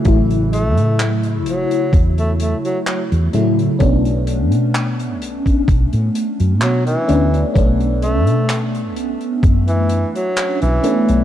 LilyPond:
<<
  \new Staff \with { instrumentName = "FM electric piano" } { \time 4/4 \key b \minor \tempo 4 = 64 <cis fis a e'>2.~ <cis fis a e'>8 <cis fis a e'>8 | <a b cis' d'>2.~ <a b cis' d'>8 <a b cis' d'>8 | <a b cis' d'>2.~ <a b cis' d'>8 <a b cis' d'>8 | }
  \new Staff \with { instrumentName = "Tenor saxophone" } { \clef bass \time 4/4 \key b \minor r8 a8 r8 fis8 r16 a16 a16 fis16 fis16 r8. | r2. fis16 e8 r16 | r8 a8 r4 r16 e8 fis8 e8. | }
  \new Staff \with { instrumentName = "Fretless electric bass" } { \clef bass \time 4/4 \key b \minor a,,8. a,8. a,,16 r16 e,8 r8. e,16 a,16 r16 | b,,8. b,8. b,,16 r16 b,,16 a,16 r16 fis,16 b,16 r16 d,16 r16 | b,,8. b,8. b,,16 r16 fis,8 r8. b,,16 r16 b,,16 | }
  \new DrumStaff \with { instrumentName = "Drums" } \drummode { \time 4/4 <hh bd>16 hh16 hh16 hh16 <hc hh>16 hh16 hh16 hh16 <hh bd>16 hh16 hh16 hh16 <hc hh>16 hh16 hh16 hh16 | <hh bd>16 hh16 hh16 hh16 <hc hh>16 hh16 hh16 <hh bd>16 <hh bd>16 hh16 hh16 hh16 <hc hh>16 hh16 hh16 hh16 | <hh bd>16 hh16 hh16 hh16 <hc hh>16 hh16 hh16 hh16 <hh bd>16 hh16 hh16 hh16 <hc hh>16 hh16 hh16 hh16 | }
>>